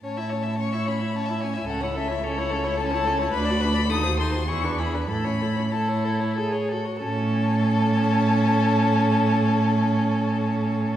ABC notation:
X:1
M:3/4
L:1/16
Q:1/4=97
K:A
V:1 name="Violin"
a4 c'2 b2 a2 g2 | f2 e2 c4 a4 | b4 ^d'2 ^b2 c'2 =b2 | b4 a4 z4 |
a12- | a12 |]
V:2 name="Violin"
c e c e c e c e c e c e | A c A c A c A c A c A c | B d B d A ^B A B G =B G B | A c A c A c A c A c A c |
A12- | A12 |]
V:3 name="Viola"
C E C E C E C E C E C E | C E C E C E C E C E C E | D F D F ^D F D F E =D E D | E C E C E4 G2 F2 |
C12- | C12 |]
V:4 name="Cello" clef=bass
A,,12 | C,,12 | D,,4 ^D,,4 E,,4 | A,,8- A,,2 z2 |
A,,12- | A,,12 |]